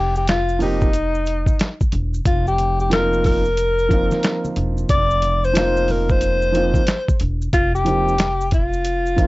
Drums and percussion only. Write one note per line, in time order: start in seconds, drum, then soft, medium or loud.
0.16 maracas soft
0.27 snare loud
0.27 closed hi-hat medium
0.27 maracas medium
0.49 maracas soft
0.60 open hi-hat soft
0.60 low conga medium
0.60 maracas soft
0.81 kick medium
0.81 maracas soft
0.93 closed hi-hat medium
0.93 maracas medium
1.15 maracas soft
1.26 closed hi-hat medium
1.26 maracas soft
1.46 kick medium
1.46 high conga medium
1.46 maracas soft
1.59 snare loud
1.59 closed hi-hat medium
1.59 maracas medium
1.81 kick medium
1.81 high conga medium
1.81 maracas soft
1.92 closed hi-hat medium
1.92 low conga soft
1.92 maracas soft
2.14 maracas soft
2.25 kick loud
2.25 closed hi-hat medium
2.25 maracas medium
2.47 maracas soft
2.58 closed hi-hat medium
2.58 high conga soft
2.58 maracas soft
2.80 maracas soft
2.91 snare loud
2.91 closed hi-hat medium
2.91 maracas medium
3.13 maracas soft
3.24 kick medium
3.24 open hi-hat medium
3.24 low conga medium
3.24 maracas soft
3.45 maracas soft
3.57 closed hi-hat medium
3.57 maracas medium
3.79 maracas soft
3.91 kick medium
3.91 closed hi-hat medium
3.91 maracas soft
4.11 snare soft
4.11 high conga medium
4.11 maracas soft
4.23 snare loud
4.23 closed hi-hat medium
4.23 maracas medium
4.45 high conga medium
4.45 maracas soft
4.56 closed hi-hat medium
4.56 low conga soft
4.56 maracas soft
4.77 maracas soft
4.89 kick loud
4.89 closed hi-hat medium
4.89 maracas medium
5.11 maracas soft
5.22 closed hi-hat medium
5.22 high conga soft
5.22 maracas soft
5.44 maracas soft
5.55 snare loud
5.55 closed hi-hat loud
5.55 maracas medium
5.77 maracas soft
5.88 open hi-hat soft
5.88 low conga medium
5.88 maracas soft
6.09 kick medium
6.09 maracas soft
6.21 closed hi-hat medium
6.21 maracas medium
6.42 maracas soft
6.55 closed hi-hat medium
6.55 maracas soft
6.74 kick medium
6.74 high conga medium
6.74 maracas soft
6.87 snare loud
6.87 closed hi-hat medium
6.87 maracas medium
7.08 kick medium
7.08 high conga medium
7.08 maracas soft
7.20 closed hi-hat medium
7.20 low conga medium
7.20 maracas soft
7.42 maracas soft
7.53 kick loud
7.53 closed hi-hat medium
7.53 maracas medium
7.75 maracas soft
7.86 closed hi-hat medium
7.86 high conga soft
7.86 maracas soft
8.08 maracas soft
8.18 snare loud
8.18 closed hi-hat medium
8.18 maracas medium
8.41 maracas soft
8.51 kick medium
8.51 closed hi-hat medium
8.51 low conga medium
8.51 maracas soft
8.73 maracas soft
8.85 closed hi-hat medium
8.85 maracas medium
9.06 maracas soft
9.18 kick medium
9.18 closed hi-hat medium
9.18 maracas soft